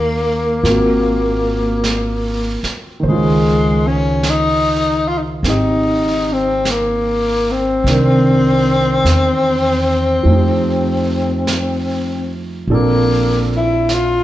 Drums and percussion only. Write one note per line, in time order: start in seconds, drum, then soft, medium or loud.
0.65 brush sweep soft
0.65 snare soft
1.84 brush sweep soft
1.84 snare soft
1.84 hi-hat pedal soft
2.64 snare soft
3.03 brush sweep soft
4.23 brush sweep soft
4.23 snare soft
4.23 hi-hat pedal soft
5.44 brush sweep soft
5.44 snare soft
6.65 brush sweep soft
6.65 snare soft
6.65 hi-hat pedal soft
7.87 brush sweep soft
7.87 snare soft
9.05 brush sweep soft
9.05 snare soft
9.05 hi-hat pedal soft
10.27 brush sweep soft
11.47 brush sweep soft
11.47 snare soft
11.47 hi-hat pedal soft
12.69 brush sweep soft
13.89 brush sweep soft
13.89 snare soft
13.89 hi-hat pedal soft